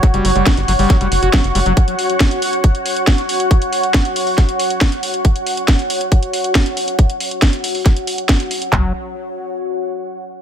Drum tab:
HH |xxoxxxooxxoxxxox|xxoxxxoxxxoxxxox|xxoxxxooxxoxxxox|xxoxxxoxxxoxxxox|
CP |----------------|----------------|----------------|----------------|
SD |----o---o---o---|----o-------o---|----o---o---o---|----o-------o---|
FT |----------------|----------------|----------------|----------------|
BD |o---o---o---o---|o---o---o---o---|o---o---o---o---|o---o---o---o---|

HH |xxoxxxooxxoxxxox|----------------|
CP |----------------|x---------------|
SD |----o---o---o---|----------------|
FT |----------------|o---------------|
BD |o---o---o---o---|o---------------|